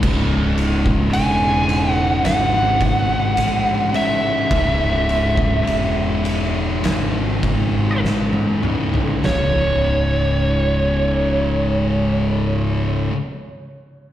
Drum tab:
CC |x---------------|----------------|----------------|
RD |--x-x-x-x-x-x-x-|x-x-x-x-x-x-----|----------------|
SD |--------o-------|--------o---o---|o---------------|
T1 |----------------|-------------o--|----------------|
T2 |----------------|--------------o-|----------------|
FT |----------------|---------------o|o---------------|
BD |o--o------o-----|o--o------o-----|----------------|